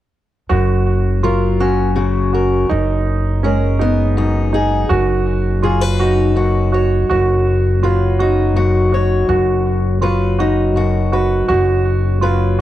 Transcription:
0.49 F#1 F#2 F#4
1.23 F#3 F4 A#4
1.60 C#4 F#4
1.96 C#3 F#4
2.33 F#4 A#4
2.69 F#1 F#2 D#4
3.43 G#3 C#4 A#4
3.79 B3 D#4
4.17 F#2 D#4
4.53 D#4 G#4
4.89 F#1 F#2 F#4
5.63 F#3 F4 G#4
5.81 B4
5.99 D#4 F#4
6.36 F#2 F#4
6.72 F#4 C#5
7.09 F#1 F#2 F#4
7.83 F#3 F4 B4
8.19 D#4 F#4
8.56 F#2 F#4
8.92 F#4 C#5
9.29 F#1 F#2 F#4
10.01 F#3 F4 B4
10.39 D#4 F#4
10.76 F#2 F#4
11.12 F#4 B4
11.48 F#1 F#2 F#4
12.21 F#3 F4 B4

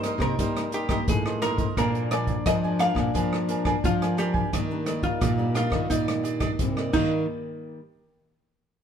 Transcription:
Already playing: G2 G3 A#3 D#4 C5
0.04 D#4 A#4 C5 D#5, cross-stick, closed hi-hat
0.18 C3 G3 A#3 D#4 A#4 C5 D#5, kick, cross-stick
0.39 C3 G3 A#3 D#4 A#4 C5 D#5, kick, closed hi-hat
0.57 cross-stick, closed hi-hat
0.72 D#4 G4 A#4 C5 D#5, closed hi-hat
0.89 G3 A#3 D#4 G4 A#4 C5 D#5, kick, cross-stick, closed hi-hat
1.08 G2 A2 G#4, kick, closed hi-hat
1.26 A#4 C5 D#5, cross-stick
1.41 G3 A#3 D#4 A#4 C5 D#5, cross-stick, closed hi-hat
1.58 A#4 C5 D#5, kick, closed hi-hat
1.77 A#2 F3 G#3 D4 A#4 D5 G#5, kick, cross-stick, closed hi-hat
1.95 closed hi-hat
2.11 F3 G#3 D4 A#4 D5 G#5, cross-stick, closed hi-hat
2.27 kick, closed hi-hat
2.46 F3 D4 A#4 D5 D#5 G#5, kick, cross-stick, closed hi-hat
2.64 F3 G#3 D4 A#4 D5 G#5
2.79 D4 A#4 D5 F5 G#5, cross-stick, closed hi-hat
2.95 A#2 F3 G#3 D4 A#4 D5 G#5, kick, cross-stick
3.14 A#2 F3 G#3 D4 A#4 D5 G#5, kick, closed hi-hat
3.33 cross-stick
3.48 F3 G#3 D4 A#4 D5 G#5, closed hi-hat
3.65 D4 A#4 D5 G#5, kick, cross-stick
3.84 F2 F3 G#3 D4 F4, kick, closed hi-hat
4.02 A#4 D5 G#5, cross-stick, closed hi-hat
4.17 D4 G4 A#4 D5 G#5, cross-stick, closed hi-hat
4.33 A#4 D5 G#5, kick
4.53 D#3 G3 A#3 D4 D#4 G4 D5 D#5, kick, cross-stick, closed hi-hat
4.71 G3 A#3 D4
4.86 G3 A#3 G4 D5 D#5, cross-stick, closed hi-hat
5.03 F4, kick, closed hi-hat
5.21 A#2 D4 G4 D5 D#5, kick, cross-stick, closed hi-hat
5.37 G3 A#3 D4 G4 D5 D#5
5.54 D4 F4 G4 D5 D#5, cross-stick, closed hi-hat
5.70 D#3 G3 A#3 D4 G4 D5 D#5, kick, cross-stick
5.90 A#2 D#3 G3 A#3 D#4 G4 D5 D#5, kick, closed hi-hat
6.08 cross-stick, closed hi-hat
6.23 D4 G4 D5 D#5, closed hi-hat
6.40 D4 G4 D5 D#5, kick, cross-stick, closed hi-hat
6.59 A#2 C3 G3 A#3 C4, kick, closed hi-hat
6.77 G4 D5 D#5, cross-stick
6.93 D#3 G3 A#3 D4 D#4 G4 D5 D#5, kick, crash

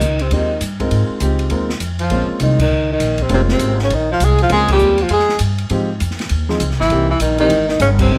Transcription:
Already playing: D#3 D#4
0.01 C#2, hi-hat pedal
0.19 C3 C4, ride
0.31 D#2 D#3 G#3 C4 D#4 F4 G4, kick, ride
0.61 G2, kick, hi-hat pedal, ride
0.80 G#3 C4 D#4 F4 A#4, kick, ride
0.91 G#2, kick, ride
1.09 muted upright bass stroke
1.20 C#2 G#3 C4 D#4 F4 G4, kick, hi-hat pedal, ride
1.39 ride
1.50 D#2 G#3 C4 D#4 F4 A#4, kick, ride
1.70 snare
1.80 F2, kick, hi-hat pedal, ride
1.99 F3 F4, ride
2.10 A#1 G#3 A#3 C4 C#4 F4, kick, ride
2.28 muted upright bass stroke
2.40 C2 D#3 D#4, kick, hi-hat pedal, ride
2.59 D#3 D#4, kick, crash
2.70 C#2
2.92 D#3 D#4
3.00 A#1, kick, hi-hat pedal, ride
3.18 kick, ride
3.22 C3 C4
3.29 F1 C3 G#3 A#3 C4 C#4 F4, ride
3.34 C4
3.49 C4, snare
3.53 C3
3.59 G#1, kick, hi-hat pedal, ride
3.79 C#3, snare
3.84 C#4
3.90 A#1 D#3 D#4, kick, ride
4.11 F3 F4
4.20 C2 G#3, kick, hi-hat pedal, ride
4.24 G#4
4.38 F3, ride
4.43 F4
4.49 C#2 G#3 A#3 C4 C#4 F4 G#4, kick, ride
4.68 G3, kick, crash
4.72 G4
4.79 D#2, hi-hat pedal
4.98 F3, ride
5.03 F4
5.09 F2 G#3, kick, ride
5.13 G#4
5.19 snare
5.29 snare
5.39 G2, kick, hi-hat pedal, ride
5.58 ride
5.70 G#2 F3 G#3 C4 D#4 G4, kick, ride
6.00 F2, kick, hi-hat pedal, ride
6.11 snare
6.19 snare, ride
6.29 D#2, kick, ride
6.49 F3 G#3 C4 D#4 G#4, snare
6.60 C#2, kick, hi-hat pedal, ride
6.69 C2, snare
6.79 G#1 E3 E4, snare
6.90 C2 E3 A#3 C4 D#4 G4, kick, ride
7.09 E3 E4
7.20 A#1 D#3 D#4, kick, hi-hat pedal, ride
7.38 D#3 E3 A#3 C4 D#4 G4, ride
7.49 G#1, kick, ride
7.68 D#3 D#4, snare
7.80 G1 C#3 C#4, kick, hi-hat pedal, ride
7.98 C3 C4, kick, crash
8.10 C2 E3 A#3 C4 D#4 G4

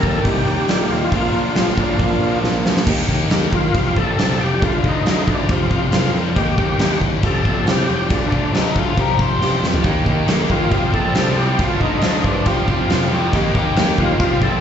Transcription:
Already playing: D#3 G3 A#3 D#4 G4 A#4
0.01 D#2 G3 G4 A4 A#4, kick
0.05 D#3 A#3
0.23 C2 A#3 D#4 G4, kick, open hi-hat
0.47 D#2
0.56 G4
0.68 A#2 A#3 D#4 G4, snare, open hi-hat
0.89 D#2 F4
1.11 A#1 A#2 F3 A#3 D4 F4 A#4, kick, open hi-hat
1.34 A#1
1.55 A#1 A#3 D4 G4, snare, open hi-hat
1.77 A#1 A#2 F3 A#3 D4 F4 A#4, kick
1.97 A#1 A#3 D4 F4, kick, open hi-hat
2.21 A#1
2.42 A#1 A#3 D4 F4, snare
2.65 D2, snare
2.77 snare
2.86 D#2 D#3 A#3 D#4 G4, kick, crash
3.08 D#2 A#3 D#4 G4, kick
3.30 D#2 D#3 A#3 D#4 G4, snare, crash
3.52 D#3 F4, kick
3.74 F1 F3 G3 C4 F4 G4, kick, crash
3.96 A#1 G3 C4 G4 A4, kick
4.18 C2 F3 G3 C4 F4 G4, snare, crash
4.40 F1 G3 C4 G4
4.61 D2 D3 A3 D4 F4 A4, kick, crash
4.84 D2 A3 D4 D#4 F4, kick
5.05 D2 D3 A3 D4 F4 A4, snare, crash
5.28 D2 D4, kick
5.48 F1 F3 G3 C4 F4 G4, kick, crash
5.70 F1 G3 C4 F4, kick
5.92 F1 F3 G3 C4 F4 A#4, snare, crash
6.15 F2 G3 C4 F4
6.36 D#2 D#3 A#3 D#4 G4, kick, crash
6.57 D#2 A#3 D#4 G4, kick
6.79 D#2 D#3 A#3 D#4 G4, snare, crash
7.01 D#2, kick
7.22 F1 F3 G3 C4 F4 G4 A4, kick, crash
7.45 A#1 G3 C4 F4, kick
7.65 C2 F3 G3 C4 F4 G4, snare, crash
7.89 F1 G3 C4 F4
8.09 D2 D3 A3 D4 F4 A4, kick, crash
8.32 D2 A3 D4 F4, kick
8.53 D2 D3 A3 D4 D#4 F4 G4, snare, crash
8.76 D2 F4, kick
8.97 F1 F3 G3 C4 F4 G4 A#4, kick, crash
9.19 F1 G3 C4 G4 C5, kick
9.41 F1 F3 G3 C4 F4 G4, snare
9.63 F2 G3 C4 G4, snare
9.74 floor tom
9.84 D#2 D#3 A#3 D#4 G4, kick, crash
10.06 D#2 A#3 D#4 G4, kick
10.26 D#2 D#3 A#3 D#4 G4, snare, crash
10.49 D#2 A#3 D#4 F4 G4, kick
10.71 F1 F3 G3 C4 F4 G4, kick, crash
10.93 A#1 F3 G3 C4 F4 G4 A4, kick
11.15 C2 F3 G3 C4 F4 G4, snare, crash
11.37 C2 G3 C4 F4 G4
11.59 D2 D3 A3 D4 F4 A4, kick, crash
11.80 D2 A3 D4 D#4 F4, kick
12.02 D2 D3 A3 D4 F4 C5, snare, crash
12.24 G2 A3 D4 F4, kick
12.45 F1 F3 G3 C4 F4 G4, kick, crash
12.67 F1 F3 G3 C4 G4, kick
12.88 F1 F3 G3 C4 F4 G4, snare, crash
13.11 F2 G3 C4 F4 G4
13.32 D#2 D#3 A#3 D#4 G4, kick, crash
13.36 C4 F4
13.54 D#2 A#3 D#4 G4, kick
13.76 D#2 D#3 A#3 D#4 G4, snare, crash
13.98 D#2 A#3 D#4 F4 G4, kick
14.19 F1 F3 G3 C4 F4 G4, kick, crash
14.41 A#1 G3 C4 G4 A4, kick
14.45 F3

